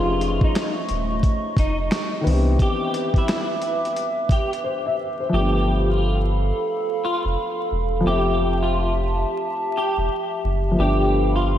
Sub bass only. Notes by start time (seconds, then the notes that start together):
Already playing: F1
0.90 D#1
1.57 F1
2.26 C2
5.33 G1
7.25 F1
7.71 E1
8.05 F1
9.97 E1
10.44 F#1
10.78 G1